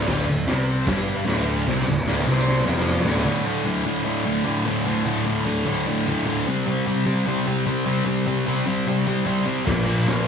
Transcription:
0.07 0.26 D1 loud
0.07 0.26 D2 loud
0.07 0.27 D3 loud
0.07 kick loud
0.07 snare loud
0.07 crash loud
0.07 crash medium
0.27 0.46 D1 medium
0.27 0.43 D2 medium
0.47 0.84 C2 medium
0.47 0.86 C3 loud
0.47 0.87 C4 loud
0.47 snare loud
0.47 crash medium
0.87 1.24 G1 loud
0.87 1.25 G2 loud
0.87 1.26 G3 loud
0.87 kick loud
0.87 snare loud
0.87 crash medium
1.26 1.64 D1 loud
1.26 1.66 D2 loud
1.26 1.66 D3 loud
1.26 snare loud
1.26 crash medium
1.66 1.85 C2 medium
1.66 1.86 C3 loud
1.66 1.87 C4 loud
1.66 snare medium
1.79 snare medium
1.86 2.04 D1 medium
1.86 2.03 D2 medium
1.86 snare medium
1.98 snare medium
2.04 2.24 D1 loud
2.04 2.26 D2 loud
2.04 2.27 D3 loud
2.04 snare medium
2.18 snare medium
2.25 2.63 C2 medium
2.25 2.65 C3 medium
2.25 2.66 C4 loud
2.25 snare medium
2.38 snare medium
2.48 snare medium
2.57 snare medium
2.65 3.04 F1 loud
2.65 3.04 F2 loud
2.65 3.05 F3 loud
2.65 snare loud
2.77 snare medium
2.87 snare loud
2.97 snare loud
3.04 3.25 D1 medium
3.04 3.24 D2 loud
3.04 3.25 D3 loud
3.04 snare loud
3.17 snare medium
3.25 3.45 D2 medium
3.25 3.45 A2 loud
3.25 3.46 D3 loud
3.45 3.64 D2 medium
3.45 3.64 A2 medium
3.45 3.65 D3 loud
3.64 3.84 D2 medium
3.64 3.85 A2 loud
3.64 3.86 D3 loud
3.84 4.03 D2 loud
3.84 4.04 A2 loud
3.84 4.05 D3 loud
4.04 4.24 D2 medium
4.04 4.24 A2 loud
4.04 4.25 D3 loud
4.25 4.44 D2 medium
4.25 4.45 A2 loud
4.25 4.46 D3 loud
4.45 4.65 D2 loud
4.45 4.65 A2 medium
4.45 4.67 D3 loud
4.66 4.85 D2 medium
4.66 4.85 A2 loud
4.66 4.86 D3 loud
4.86 5.04 D2 loud
4.86 5.05 A2 loud
4.86 5.05 D3 loud
5.06 5.25 D2 medium
5.06 5.25 A2 loud
5.06 5.26 D3 medium
5.26 5.44 D2 medium
5.26 5.45 A2 loud
5.26 5.45 D3 loud
5.45 5.65 D2 loud
5.45 5.65 A2 loud
5.45 5.65 D3 loud
5.66 5.85 D2 medium
5.66 5.87 A2 loud
5.66 5.87 D3 loud
5.87 6.06 D2 medium
5.87 6.07 A2 medium
5.87 6.07 D3 medium
6.07 6.26 D2 loud
6.07 6.26 A2 loud
6.07 6.26 D3 loud
6.27 6.45 D2 medium
6.27 6.46 A2 loud
6.27 6.46 D3 loud
6.47 6.66 C3 loud
6.47 6.67 G3 medium
6.47 6.67 C4 loud
6.67 6.86 C3 loud
6.67 6.87 G3 loud
6.67 6.87 C4 loud
6.87 7.06 C3 medium
6.87 7.06 G3 loud
6.87 7.06 C4 loud
7.06 7.25 C3 loud
7.06 7.26 G3 loud
7.06 7.26 C4 loud
7.26 7.45 C3 loud
7.26 7.45 G3 loud
7.26 7.45 C4 loud
7.46 7.64 C3 medium
7.46 7.65 G3 loud
7.46 7.66 C4 loud
7.66 7.85 C3 medium
7.66 7.85 G3 loud
7.66 7.86 C4 loud
7.86 8.04 C3 loud
7.86 8.05 G3 medium
7.86 8.05 C4 loud
8.05 8.25 C3 loud
8.05 8.26 G3 loud
8.05 8.27 C4 loud
8.27 8.45 C3 medium
8.27 8.46 G3 loud
8.27 8.47 C4 loud
8.46 8.65 C3 loud
8.46 8.67 G3 loud
8.46 8.67 C4 loud
8.66 8.86 C3 medium
8.66 8.87 G3 loud
8.66 8.87 C4 loud
8.87 9.07 C3 loud
8.87 9.07 G3 loud
8.87 9.07 C4 loud
9.08 9.25 C3 medium
9.08 9.25 G3 loud
9.08 9.26 C4 loud
9.26 9.45 C3 loud
9.26 9.45 G3 loud
9.26 9.46 C4 medium
9.46 9.65 C3 medium
9.46 9.66 G3 loud
9.46 9.66 C4 loud
9.65 10.01 A#1 loud
9.65 9.85 A#2 loud
9.65 9.86 F3 loud
9.65 9.87 A#3 loud
9.65 kick loud
9.65 snare loud
9.65 crash loud
9.86 10.07 A#2 medium
9.86 10.07 F3 medium
9.86 10.08 A#3 loud
10.07 10.25 A#1 loud
10.07 10.26 A#2 medium
10.07 10.27 F3 loud
10.07 10.28 A#3 loud
10.07 snare loud
10.07 open hi-hat medium

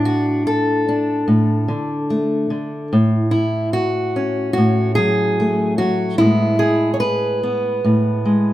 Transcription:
0.00 1.26 A2 medium
0.00 0.87 D4 medium
0.05 0.46 F#4 medium
0.47 2.92 A4 medium
0.89 2.88 D4 soft
1.28 1.70 A2 medium
1.68 2.49 D3 soft
2.10 2.87 A3 soft
2.50 2.92 D3 soft
2.93 4.56 A2 medium
3.31 3.73 E4 medium
3.73 4.52 F#4 medium
4.16 6.15 C#4 soft
4.53 4.95 F#4 medium
4.58 6.18 A2 medium
4.95 5.78 F#3 soft
4.95 5.78 G#4 medium
5.40 6.16 A3 soft
5.78 6.15 F#3 soft
5.78 6.18 F#4 medium
6.18 7.83 A2 medium
6.18 8.24 G#3 soft
6.18 6.59 B3 soft
6.18 6.93 E4 medium
6.59 7.42 G#4 medium
6.94 7.00 C#5 medium
7.00 8.53 B4 medium
7.43 8.53 B3 soft
7.85 8.53 A2 medium
8.25 8.53 G#3 soft

